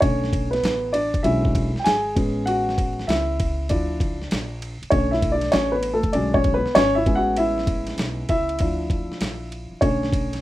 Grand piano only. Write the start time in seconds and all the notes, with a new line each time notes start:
0.00 D3 A3 C#4 C#5
0.51 B3 B4
0.93 D4 D5
1.23 D3 F#3 G#3 C#4 E4 E5
1.79 G5
1.84 G#4 G#5
2.15 G#3 B3 C#4
2.46 F#4 F#5
3.07 E4 E5
3.69 F3 D4 E4 D5
4.90 D3 A3 C#4 C#5
5.11 E4 E5
5.32 D4 D5
5.52 C#4 C#5
5.72 B3 B4
5.94 A3 A4
6.13 D3 F#3 G#3 C#4 D4 D5
6.34 C#4 C#5
6.54 B3 B4
6.75 C#4 C#5
6.95 E4 E5
7.06 G#3 B3 C#4
7.15 F#4 F#5
7.37 E4 E5
8.29 E4 E5
8.60 F3 D4 E4
9.81 D3 A3 C#4 C#5